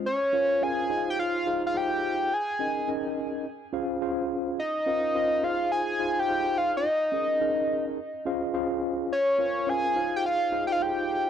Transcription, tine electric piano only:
X:1
M:4/4
L:1/8
Q:"Swing 16ths" 1/4=106
K:Ab
V:1 name="Tine electric piano"
z [DFBcf] [DFBcf] [EFAcef]2 [EFAcf] [EFAcf]2 | z [DEABe] [DEABe]2 z [DFAcf] [DFAcf]2 | z [DFBcf] [DFBcf] [EFAcf]2 [EFAcf] [EFAcf]2 | z [DEABe] [DEABe]2 z [DFAcf] [DFAcf]2 |
z [DFBcf] [DFBcf] [EFAcf]2 [EFAce] [EFAcf]2 |]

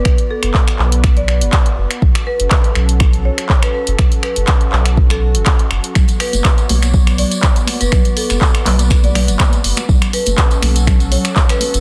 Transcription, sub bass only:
X:1
M:4/4
L:1/16
Q:"Swing 16ths" 1/4=122
K:Bm
V:1 name="Sub bass" clef=bass
B,,, z2 F,,, z2 B,,,4- B,,, F,,, z2 F,,, z | B,,, z2 F,,, z2 B,,,4 z4 z F,,, | B,,, z2 F,,, z2 B,,,4- B,,, F,,, z2 F,,, z | B,,, z2 F,,, z2 B,,,4 z4 z F,,, |
B,,, z2 F,,, z2 B,,,4- B,,, F,,, z2 F,,, z | B,,, z2 F,,, z2 B,,,4 z4 z F,,, |]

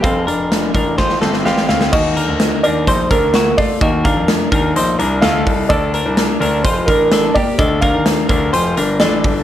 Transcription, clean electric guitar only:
X:1
M:4/4
L:1/8
Q:1/4=127
K:Eblyd
V:1 name="Clean electric guitar"
[CA] [DB]2 [DB] [Fc] [CA] [CG]2 | [B,_G] [D,B]2 [DB] [Ec] [DB] [B,G] [A,F] | [B,_G] [DB]2 [DB] [Ec] [DB] [EA]2 | [DA] [DB]2 [DB] [Fc] [DB] [DA] [B,G] |
[DA] [DB]2 [DB] [Fc] [DB] [DA]2 |]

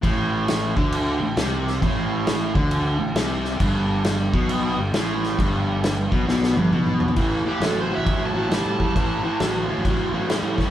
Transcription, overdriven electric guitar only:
X:1
M:4/4
L:1/8
Q:"Swing" 1/4=134
K:Glyd
V:1 name="Overdriven electric guitar" clef=bass
A,,3 D,2 A,, =C,2 | A,,3 D,2 A,, =C,2 | G,,3 B,,2 G,, A,,2 | G,,3 B,, B,, G,, B,,2 |
[A,,E,] [A,,E,] [A,,F,] [A,,F,] [A,,F,] [A,,F,] [A,,G,] [A,,G,] | [A,,E,] [A,,E,] [A,,F,] [A,,F,] [A,,F,] [A,,F,] [A,,G,] [A,,G,] |]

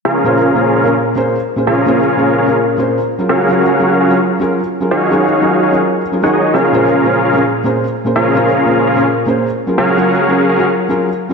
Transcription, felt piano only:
X:1
M:4/4
L:1/16
Q:1/4=148
K:Bbm
V:1 name="Felt piano"
z2 [B,,B,DAc] z2 [B,,B,DAc]3 [B,,B,DAB]3 [B,,B,DAc]2 z2 [B,,B,DAc]- | [B,,B,DAc]2 [B,,B,DAc] z2 [B,,B,DAc]3 [B,,B,DAB]3 [B,,B,DAc]2 z2 [G,DFAB]- | [G,DFAB]2 [G,DFAB] z2 [G,DFAB]3 [G,DFAB]3 [G,DFAB]2 z2 [G,DFAB]- | [G,DFAB]2 [G,DFAB] z2 [G,DFAB]3 [G,DFAB]3 z [G,DFAB] [G,DFAB]3 |
z2 [B,,B,DAc] z2 [B,,B,DAc]3 [B,,B,DAB]3 [B,,B,DAc]2 z2 [B,,B,DAc]- | [B,,B,DAc]2 [B,,B,DAc] z2 [B,,B,DAc]3 [B,,B,DAB]3 [B,,B,DAc]2 z2 [G,DFAB]- | [G,DFAB]2 [G,DFAB] z2 [G,DFAB]3 [G,DFAB]3 [G,DFAB]2 z2 [G,DFA] |]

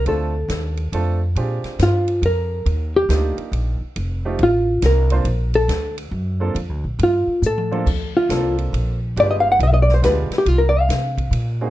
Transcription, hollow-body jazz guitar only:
X:1
M:3/4
L:1/16
Q:"Swing" 1/4=138
K:Bb
V:1 name="Hollow-body jazz guitar"
A12 | z4 F4 B4- | B2 G4 z6 | z4 F4 B4- |
B2 A4 z6 | z4 F4 A4- | A2 F4 z6 | d e f _g f e d c =B3 =G |
F B d f8- f |]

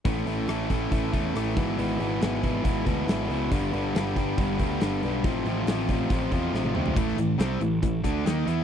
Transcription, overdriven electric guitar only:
X:1
M:4/4
L:1/8
Q:1/4=139
K:Emix
V:1 name="Overdriven electric guitar" clef=bass
[A,,E,A,] [A,,E,A,] [A,,E,A,] [A,,E,A,] [A,,E,A,] [A,,E,A,] [A,,E,A,] [E,,B,,E,] | [E,,B,,E,] [E,,B,,E,] [E,,B,,E,] [E,,B,,E,] [E,,B,,E,] [E,,B,,E,] [E,,B,,E,] [E,,B,,E,] | [=G,,D,=G,] [G,,D,G,] [G,,D,G,] [G,,D,G,] [G,,D,G,] [G,,D,G,] [G,,D,G,] [G,,D,G,] | [=F,,=C,=F,] [F,,C,F,] [F,,C,F,] [F,,C,F,] [F,,C,F,] [F,,C,F,] [F,,C,F,] [F,,C,F,] |
[A,,E,A,] [A,,E,] [=C,=G,=C] [A,,E,] [A,,E,] [D,A,D] [^D,_B,^D] [E,=B,E] |]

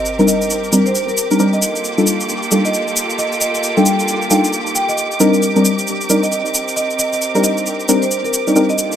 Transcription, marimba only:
X:1
M:4/4
L:1/16
Q:"Swing 16ths" 1/4=134
K:Cdor
V:1 name="Marimba"
z2 e2 z3 c2 B3 z e z2 | z6 z e e z3 e2 e e | z g g z3 g2 z2 g e4 z | z6 z e e z3 e2 e e |
z2 e2 z3 c2 B3 z e z2 |]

